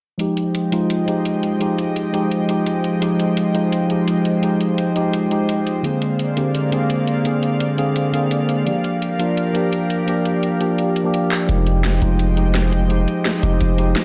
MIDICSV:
0, 0, Header, 1, 5, 480
1, 0, Start_track
1, 0, Tempo, 352941
1, 262, Time_signature, 4, 2, 24, 8
1, 19101, End_track
2, 0, Start_track
2, 0, Title_t, "Analog synth pad"
2, 0, Program_c, 0, 89
2, 265, Note_on_c, 0, 72, 74
2, 265, Note_on_c, 0, 79, 88
2, 266, Note_on_c, 0, 53, 83
2, 266, Note_on_c, 0, 56, 72
2, 266, Note_on_c, 0, 75, 72
2, 7889, Note_off_c, 0, 79, 0
2, 7890, Note_off_c, 0, 53, 0
2, 7890, Note_off_c, 0, 75, 0
2, 7947, Note_on_c, 0, 58, 81
2, 7949, Note_on_c, 0, 77, 91
2, 7950, Note_on_c, 0, 74, 75
2, 11730, Note_off_c, 0, 56, 0
2, 11730, Note_off_c, 0, 72, 0
2, 11747, Note_off_c, 0, 58, 0
2, 11780, Note_on_c, 0, 67, 84
2, 11780, Note_on_c, 0, 70, 75
2, 15571, Note_off_c, 0, 77, 0
2, 15572, Note_off_c, 0, 74, 0
2, 15583, Note_off_c, 0, 67, 0
2, 15583, Note_off_c, 0, 70, 0
2, 15622, Note_on_c, 0, 56, 82
2, 15622, Note_on_c, 0, 75, 74
2, 15623, Note_on_c, 0, 72, 73
2, 15623, Note_on_c, 0, 79, 89
2, 19101, Note_off_c, 0, 56, 0
2, 19101, Note_off_c, 0, 72, 0
2, 19101, Note_off_c, 0, 75, 0
2, 19101, Note_off_c, 0, 79, 0
2, 19101, End_track
3, 0, Start_track
3, 0, Title_t, "Tine electric piano"
3, 0, Program_c, 1, 4
3, 240, Note_on_c, 1, 53, 70
3, 255, Note_on_c, 1, 56, 63
3, 270, Note_on_c, 1, 63, 64
3, 286, Note_on_c, 1, 67, 77
3, 533, Control_c, 1, 64, 127
3, 943, Note_off_c, 1, 53, 0
3, 950, Note_off_c, 1, 56, 0
3, 958, Note_off_c, 1, 63, 0
3, 966, Note_off_c, 1, 67, 0
3, 973, Note_on_c, 1, 53, 73
3, 982, Note_on_c, 1, 56, 67
3, 989, Note_on_c, 1, 63, 69
3, 996, Note_on_c, 1, 65, 84
3, 1424, Note_off_c, 1, 53, 0
3, 1434, Note_off_c, 1, 56, 0
3, 1437, Note_off_c, 1, 63, 0
3, 1440, Note_on_c, 1, 53, 67
3, 1441, Note_off_c, 1, 65, 0
3, 1456, Note_on_c, 1, 56, 62
3, 1471, Note_on_c, 1, 63, 64
3, 1484, Note_on_c, 1, 67, 78
3, 2143, Note_off_c, 1, 53, 0
3, 2151, Note_off_c, 1, 56, 0
3, 2158, Note_off_c, 1, 63, 0
3, 2160, Note_on_c, 1, 53, 75
3, 2165, Note_off_c, 1, 67, 0
3, 2174, Note_on_c, 1, 56, 70
3, 2190, Note_on_c, 1, 63, 68
3, 2205, Note_on_c, 1, 67, 82
3, 2863, Note_off_c, 1, 53, 0
3, 2870, Note_off_c, 1, 56, 0
3, 2878, Note_off_c, 1, 63, 0
3, 2885, Note_off_c, 1, 67, 0
3, 2892, Note_on_c, 1, 53, 75
3, 2900, Note_on_c, 1, 56, 71
3, 2906, Note_on_c, 1, 63, 70
3, 2916, Note_on_c, 1, 67, 84
3, 3349, Note_off_c, 1, 53, 0
3, 3353, Note_off_c, 1, 56, 0
3, 3356, Note_off_c, 1, 63, 0
3, 3361, Note_off_c, 1, 67, 0
3, 3364, Note_on_c, 1, 53, 70
3, 3379, Note_on_c, 1, 56, 67
3, 3393, Note_on_c, 1, 63, 65
3, 3408, Note_on_c, 1, 67, 79
3, 4065, Note_off_c, 1, 53, 0
3, 4073, Note_off_c, 1, 56, 0
3, 4079, Note_off_c, 1, 63, 0
3, 4083, Note_on_c, 1, 53, 72
3, 4087, Note_off_c, 1, 67, 0
3, 4098, Note_on_c, 1, 56, 66
3, 4111, Note_on_c, 1, 63, 65
3, 4126, Note_on_c, 1, 67, 78
3, 4784, Note_off_c, 1, 53, 0
3, 4792, Note_off_c, 1, 56, 0
3, 4798, Note_off_c, 1, 63, 0
3, 4806, Note_off_c, 1, 67, 0
3, 4811, Note_on_c, 1, 53, 74
3, 4819, Note_on_c, 1, 56, 67
3, 4828, Note_on_c, 1, 63, 67
3, 4832, Note_on_c, 1, 65, 82
3, 5268, Note_off_c, 1, 53, 0
3, 5272, Note_off_c, 1, 56, 0
3, 5277, Note_off_c, 1, 63, 0
3, 5279, Note_off_c, 1, 65, 0
3, 5284, Note_on_c, 1, 53, 70
3, 5298, Note_on_c, 1, 56, 65
3, 5314, Note_on_c, 1, 63, 65
3, 5329, Note_on_c, 1, 67, 77
3, 5985, Note_off_c, 1, 53, 0
3, 5992, Note_off_c, 1, 56, 0
3, 6000, Note_off_c, 1, 63, 0
3, 6004, Note_on_c, 1, 53, 73
3, 6007, Note_off_c, 1, 67, 0
3, 6019, Note_on_c, 1, 56, 67
3, 6035, Note_on_c, 1, 63, 68
3, 6050, Note_on_c, 1, 67, 80
3, 6705, Note_off_c, 1, 53, 0
3, 6712, Note_off_c, 1, 56, 0
3, 6720, Note_off_c, 1, 63, 0
3, 6728, Note_off_c, 1, 67, 0
3, 6736, Note_on_c, 1, 53, 78
3, 6742, Note_on_c, 1, 56, 71
3, 6749, Note_on_c, 1, 63, 72
3, 6757, Note_on_c, 1, 67, 86
3, 7186, Note_off_c, 1, 53, 0
3, 7194, Note_off_c, 1, 56, 0
3, 7197, Note_off_c, 1, 63, 0
3, 7201, Note_off_c, 1, 67, 0
3, 7202, Note_on_c, 1, 53, 71
3, 7216, Note_on_c, 1, 56, 64
3, 7231, Note_on_c, 1, 63, 67
3, 7246, Note_on_c, 1, 67, 81
3, 7904, Note_off_c, 1, 53, 0
3, 7911, Note_off_c, 1, 56, 0
3, 7918, Note_off_c, 1, 63, 0
3, 7921, Note_on_c, 1, 50, 71
3, 7926, Note_off_c, 1, 67, 0
3, 7935, Note_on_c, 1, 58, 67
3, 7950, Note_on_c, 1, 60, 63
3, 7958, Control_c, 1, 64, 0
3, 7965, Note_on_c, 1, 68, 79
3, 8195, Control_c, 1, 64, 127
3, 8623, Note_off_c, 1, 50, 0
3, 8630, Note_off_c, 1, 58, 0
3, 8638, Note_off_c, 1, 60, 0
3, 8646, Note_off_c, 1, 68, 0
3, 8653, Note_on_c, 1, 50, 75
3, 8660, Note_on_c, 1, 58, 67
3, 8668, Note_on_c, 1, 60, 68
3, 8675, Note_on_c, 1, 67, 83
3, 9104, Note_off_c, 1, 50, 0
3, 9113, Note_off_c, 1, 58, 0
3, 9117, Note_off_c, 1, 60, 0
3, 9120, Note_off_c, 1, 67, 0
3, 9120, Note_on_c, 1, 50, 68
3, 9132, Note_on_c, 1, 58, 63
3, 9149, Note_on_c, 1, 60, 63
3, 9163, Note_on_c, 1, 68, 78
3, 9823, Note_off_c, 1, 50, 0
3, 9829, Note_off_c, 1, 58, 0
3, 9838, Note_off_c, 1, 60, 0
3, 9840, Note_on_c, 1, 50, 73
3, 9844, Note_off_c, 1, 68, 0
3, 9855, Note_on_c, 1, 58, 66
3, 9869, Note_on_c, 1, 60, 68
3, 9883, Note_on_c, 1, 68, 81
3, 10543, Note_off_c, 1, 50, 0
3, 10550, Note_off_c, 1, 58, 0
3, 10557, Note_off_c, 1, 60, 0
3, 10564, Note_off_c, 1, 68, 0
3, 10570, Note_on_c, 1, 50, 79
3, 10578, Note_on_c, 1, 58, 71
3, 10585, Note_on_c, 1, 60, 70
3, 10592, Note_on_c, 1, 68, 87
3, 11022, Note_off_c, 1, 50, 0
3, 11032, Note_off_c, 1, 58, 0
3, 11035, Note_off_c, 1, 60, 0
3, 11039, Note_off_c, 1, 68, 0
3, 11039, Note_on_c, 1, 50, 72
3, 11054, Note_on_c, 1, 58, 64
3, 11067, Note_on_c, 1, 60, 69
3, 11082, Note_on_c, 1, 68, 78
3, 11742, Note_off_c, 1, 50, 0
3, 11750, Note_off_c, 1, 58, 0
3, 11757, Note_off_c, 1, 60, 0
3, 11762, Note_on_c, 1, 53, 72
3, 11764, Note_off_c, 1, 68, 0
3, 11775, Note_on_c, 1, 58, 66
3, 11790, Note_on_c, 1, 62, 66
3, 11800, Control_c, 1, 64, 0
3, 11805, Note_on_c, 1, 67, 77
3, 12063, Control_c, 1, 64, 127
3, 12464, Note_off_c, 1, 53, 0
3, 12471, Note_off_c, 1, 58, 0
3, 12478, Note_off_c, 1, 62, 0
3, 12485, Note_off_c, 1, 67, 0
3, 12491, Note_on_c, 1, 53, 76
3, 12499, Note_on_c, 1, 58, 70
3, 12506, Note_on_c, 1, 62, 71
3, 12512, Note_on_c, 1, 65, 82
3, 12944, Note_off_c, 1, 53, 0
3, 12953, Note_off_c, 1, 58, 0
3, 12956, Note_off_c, 1, 62, 0
3, 12959, Note_off_c, 1, 65, 0
3, 12960, Note_on_c, 1, 53, 71
3, 12976, Note_on_c, 1, 58, 66
3, 12991, Note_on_c, 1, 62, 65
3, 13004, Note_on_c, 1, 67, 79
3, 13663, Note_off_c, 1, 53, 0
3, 13671, Note_off_c, 1, 58, 0
3, 13678, Note_off_c, 1, 62, 0
3, 13681, Note_on_c, 1, 53, 74
3, 13685, Note_off_c, 1, 67, 0
3, 13696, Note_on_c, 1, 58, 70
3, 13712, Note_on_c, 1, 62, 69
3, 13726, Note_on_c, 1, 67, 84
3, 14383, Note_off_c, 1, 53, 0
3, 14391, Note_off_c, 1, 58, 0
3, 14399, Note_off_c, 1, 62, 0
3, 14406, Note_off_c, 1, 67, 0
3, 14413, Note_on_c, 1, 53, 80
3, 14420, Note_on_c, 1, 58, 72
3, 14427, Note_on_c, 1, 62, 71
3, 14434, Note_on_c, 1, 67, 87
3, 14869, Note_off_c, 1, 53, 0
3, 14873, Note_off_c, 1, 58, 0
3, 14877, Note_off_c, 1, 62, 0
3, 14880, Note_off_c, 1, 67, 0
3, 15002, Note_on_c, 1, 53, 75
3, 15017, Note_on_c, 1, 58, 71
3, 15030, Note_on_c, 1, 62, 70
3, 15046, Note_on_c, 1, 67, 85
3, 15584, Note_off_c, 1, 53, 0
3, 15591, Note_off_c, 1, 58, 0
3, 15597, Note_off_c, 1, 62, 0
3, 15601, Note_on_c, 1, 53, 72
3, 15605, Note_off_c, 1, 67, 0
3, 15614, Note_on_c, 1, 56, 66
3, 15629, Note_on_c, 1, 63, 64
3, 15640, Control_c, 1, 64, 0
3, 15645, Note_on_c, 1, 67, 80
3, 15889, Control_c, 1, 64, 127
3, 16303, Note_off_c, 1, 53, 0
3, 16310, Note_off_c, 1, 56, 0
3, 16317, Note_off_c, 1, 63, 0
3, 16326, Note_off_c, 1, 67, 0
3, 16327, Note_on_c, 1, 53, 76
3, 16336, Note_on_c, 1, 56, 69
3, 16343, Note_on_c, 1, 63, 71
3, 16349, Note_on_c, 1, 65, 83
3, 16782, Note_off_c, 1, 53, 0
3, 16791, Note_off_c, 1, 56, 0
3, 16794, Note_off_c, 1, 63, 0
3, 16797, Note_off_c, 1, 65, 0
3, 16799, Note_on_c, 1, 53, 68
3, 16813, Note_on_c, 1, 56, 62
3, 16829, Note_on_c, 1, 63, 64
3, 16844, Note_on_c, 1, 67, 75
3, 17502, Note_off_c, 1, 53, 0
3, 17510, Note_off_c, 1, 56, 0
3, 17517, Note_off_c, 1, 63, 0
3, 17517, Note_on_c, 1, 53, 74
3, 17525, Note_off_c, 1, 67, 0
3, 17531, Note_on_c, 1, 56, 68
3, 17547, Note_on_c, 1, 63, 67
3, 17560, Note_on_c, 1, 67, 84
3, 18221, Note_off_c, 1, 53, 0
3, 18228, Note_off_c, 1, 56, 0
3, 18236, Note_off_c, 1, 63, 0
3, 18243, Note_off_c, 1, 67, 0
3, 18246, Note_on_c, 1, 53, 80
3, 18252, Note_on_c, 1, 56, 74
3, 18260, Note_on_c, 1, 63, 73
3, 18268, Note_on_c, 1, 67, 86
3, 18700, Note_off_c, 1, 53, 0
3, 18709, Note_off_c, 1, 56, 0
3, 18713, Note_off_c, 1, 63, 0
3, 18717, Note_off_c, 1, 67, 0
3, 18717, Note_on_c, 1, 53, 74
3, 18732, Note_on_c, 1, 56, 67
3, 18746, Note_on_c, 1, 63, 66
3, 18762, Note_on_c, 1, 67, 81
3, 19101, Note_off_c, 1, 53, 0
3, 19101, Note_off_c, 1, 56, 0
3, 19101, Note_off_c, 1, 63, 0
3, 19101, Note_off_c, 1, 67, 0
3, 19101, End_track
4, 0, Start_track
4, 0, Title_t, "808-style bass"
4, 0, Program_c, 2, 38
4, 15623, Note_on_c, 2, 29, 99
4, 16324, Note_off_c, 2, 29, 0
4, 16342, Note_on_c, 2, 29, 104
4, 17764, Note_off_c, 2, 29, 0
4, 18262, Note_on_c, 2, 29, 101
4, 18479, Note_off_c, 2, 29, 0
4, 18504, Note_on_c, 2, 29, 82
4, 18964, Note_off_c, 2, 29, 0
4, 19101, End_track
5, 0, Start_track
5, 0, Title_t, "Drums"
5, 263, Note_on_c, 9, 42, 93
5, 399, Note_off_c, 9, 42, 0
5, 503, Note_on_c, 9, 42, 62
5, 639, Note_off_c, 9, 42, 0
5, 744, Note_on_c, 9, 42, 89
5, 880, Note_off_c, 9, 42, 0
5, 983, Note_on_c, 9, 42, 66
5, 1119, Note_off_c, 9, 42, 0
5, 1225, Note_on_c, 9, 42, 88
5, 1361, Note_off_c, 9, 42, 0
5, 1465, Note_on_c, 9, 42, 65
5, 1601, Note_off_c, 9, 42, 0
5, 1705, Note_on_c, 9, 42, 91
5, 1841, Note_off_c, 9, 42, 0
5, 1946, Note_on_c, 9, 42, 66
5, 2082, Note_off_c, 9, 42, 0
5, 2185, Note_on_c, 9, 42, 86
5, 2321, Note_off_c, 9, 42, 0
5, 2426, Note_on_c, 9, 42, 62
5, 2562, Note_off_c, 9, 42, 0
5, 2666, Note_on_c, 9, 42, 86
5, 2802, Note_off_c, 9, 42, 0
5, 2906, Note_on_c, 9, 42, 63
5, 3042, Note_off_c, 9, 42, 0
5, 3145, Note_on_c, 9, 42, 88
5, 3281, Note_off_c, 9, 42, 0
5, 3384, Note_on_c, 9, 42, 64
5, 3520, Note_off_c, 9, 42, 0
5, 3625, Note_on_c, 9, 42, 86
5, 3761, Note_off_c, 9, 42, 0
5, 3865, Note_on_c, 9, 42, 62
5, 4001, Note_off_c, 9, 42, 0
5, 4106, Note_on_c, 9, 42, 85
5, 4242, Note_off_c, 9, 42, 0
5, 4344, Note_on_c, 9, 42, 60
5, 4480, Note_off_c, 9, 42, 0
5, 4583, Note_on_c, 9, 42, 82
5, 4719, Note_off_c, 9, 42, 0
5, 4823, Note_on_c, 9, 42, 60
5, 4959, Note_off_c, 9, 42, 0
5, 5064, Note_on_c, 9, 42, 83
5, 5200, Note_off_c, 9, 42, 0
5, 5303, Note_on_c, 9, 42, 60
5, 5439, Note_off_c, 9, 42, 0
5, 5543, Note_on_c, 9, 42, 84
5, 5679, Note_off_c, 9, 42, 0
5, 5782, Note_on_c, 9, 42, 63
5, 5918, Note_off_c, 9, 42, 0
5, 6022, Note_on_c, 9, 42, 85
5, 6158, Note_off_c, 9, 42, 0
5, 6264, Note_on_c, 9, 42, 55
5, 6400, Note_off_c, 9, 42, 0
5, 6502, Note_on_c, 9, 42, 81
5, 6638, Note_off_c, 9, 42, 0
5, 6743, Note_on_c, 9, 42, 59
5, 6879, Note_off_c, 9, 42, 0
5, 6983, Note_on_c, 9, 42, 81
5, 7119, Note_off_c, 9, 42, 0
5, 7225, Note_on_c, 9, 42, 60
5, 7361, Note_off_c, 9, 42, 0
5, 7465, Note_on_c, 9, 42, 82
5, 7601, Note_off_c, 9, 42, 0
5, 7705, Note_on_c, 9, 42, 58
5, 7841, Note_off_c, 9, 42, 0
5, 7944, Note_on_c, 9, 42, 85
5, 8080, Note_off_c, 9, 42, 0
5, 8184, Note_on_c, 9, 42, 58
5, 8320, Note_off_c, 9, 42, 0
5, 8423, Note_on_c, 9, 42, 80
5, 8559, Note_off_c, 9, 42, 0
5, 8662, Note_on_c, 9, 42, 59
5, 8798, Note_off_c, 9, 42, 0
5, 8903, Note_on_c, 9, 42, 82
5, 9039, Note_off_c, 9, 42, 0
5, 9143, Note_on_c, 9, 42, 61
5, 9279, Note_off_c, 9, 42, 0
5, 9381, Note_on_c, 9, 42, 83
5, 9517, Note_off_c, 9, 42, 0
5, 9621, Note_on_c, 9, 42, 59
5, 9757, Note_off_c, 9, 42, 0
5, 9862, Note_on_c, 9, 42, 86
5, 9998, Note_off_c, 9, 42, 0
5, 10102, Note_on_c, 9, 42, 57
5, 10238, Note_off_c, 9, 42, 0
5, 10341, Note_on_c, 9, 42, 84
5, 10477, Note_off_c, 9, 42, 0
5, 10584, Note_on_c, 9, 42, 62
5, 10720, Note_off_c, 9, 42, 0
5, 10824, Note_on_c, 9, 42, 87
5, 10960, Note_off_c, 9, 42, 0
5, 11065, Note_on_c, 9, 42, 60
5, 11201, Note_off_c, 9, 42, 0
5, 11304, Note_on_c, 9, 42, 89
5, 11440, Note_off_c, 9, 42, 0
5, 11545, Note_on_c, 9, 42, 64
5, 11681, Note_off_c, 9, 42, 0
5, 11785, Note_on_c, 9, 42, 94
5, 11921, Note_off_c, 9, 42, 0
5, 12025, Note_on_c, 9, 42, 61
5, 12161, Note_off_c, 9, 42, 0
5, 12266, Note_on_c, 9, 42, 87
5, 12402, Note_off_c, 9, 42, 0
5, 12505, Note_on_c, 9, 42, 65
5, 12641, Note_off_c, 9, 42, 0
5, 12746, Note_on_c, 9, 42, 91
5, 12882, Note_off_c, 9, 42, 0
5, 12984, Note_on_c, 9, 42, 65
5, 13120, Note_off_c, 9, 42, 0
5, 13225, Note_on_c, 9, 42, 90
5, 13361, Note_off_c, 9, 42, 0
5, 13464, Note_on_c, 9, 42, 66
5, 13600, Note_off_c, 9, 42, 0
5, 13705, Note_on_c, 9, 42, 94
5, 13841, Note_off_c, 9, 42, 0
5, 13945, Note_on_c, 9, 42, 62
5, 14081, Note_off_c, 9, 42, 0
5, 14184, Note_on_c, 9, 42, 92
5, 14320, Note_off_c, 9, 42, 0
5, 14425, Note_on_c, 9, 42, 65
5, 14561, Note_off_c, 9, 42, 0
5, 14666, Note_on_c, 9, 42, 91
5, 14802, Note_off_c, 9, 42, 0
5, 14906, Note_on_c, 9, 42, 68
5, 15042, Note_off_c, 9, 42, 0
5, 15146, Note_on_c, 9, 42, 92
5, 15282, Note_off_c, 9, 42, 0
5, 15387, Note_on_c, 9, 39, 89
5, 15387, Note_on_c, 9, 42, 66
5, 15523, Note_off_c, 9, 39, 0
5, 15523, Note_off_c, 9, 42, 0
5, 15625, Note_on_c, 9, 42, 91
5, 15761, Note_off_c, 9, 42, 0
5, 15865, Note_on_c, 9, 42, 63
5, 16001, Note_off_c, 9, 42, 0
5, 16105, Note_on_c, 9, 38, 111
5, 16105, Note_on_c, 9, 42, 92
5, 16241, Note_off_c, 9, 38, 0
5, 16241, Note_off_c, 9, 42, 0
5, 16344, Note_on_c, 9, 42, 66
5, 16480, Note_off_c, 9, 42, 0
5, 16583, Note_on_c, 9, 42, 89
5, 16719, Note_off_c, 9, 42, 0
5, 16824, Note_on_c, 9, 42, 65
5, 16960, Note_off_c, 9, 42, 0
5, 17063, Note_on_c, 9, 38, 112
5, 17063, Note_on_c, 9, 42, 91
5, 17199, Note_off_c, 9, 38, 0
5, 17199, Note_off_c, 9, 42, 0
5, 17304, Note_on_c, 9, 42, 65
5, 17440, Note_off_c, 9, 42, 0
5, 17543, Note_on_c, 9, 42, 91
5, 17679, Note_off_c, 9, 42, 0
5, 17785, Note_on_c, 9, 42, 63
5, 17921, Note_off_c, 9, 42, 0
5, 18024, Note_on_c, 9, 38, 115
5, 18024, Note_on_c, 9, 42, 88
5, 18160, Note_off_c, 9, 38, 0
5, 18160, Note_off_c, 9, 42, 0
5, 18266, Note_on_c, 9, 42, 63
5, 18402, Note_off_c, 9, 42, 0
5, 18504, Note_on_c, 9, 42, 86
5, 18640, Note_off_c, 9, 42, 0
5, 18744, Note_on_c, 9, 42, 65
5, 18880, Note_off_c, 9, 42, 0
5, 18983, Note_on_c, 9, 38, 117
5, 18983, Note_on_c, 9, 42, 90
5, 19101, Note_off_c, 9, 38, 0
5, 19101, Note_off_c, 9, 42, 0
5, 19101, End_track
0, 0, End_of_file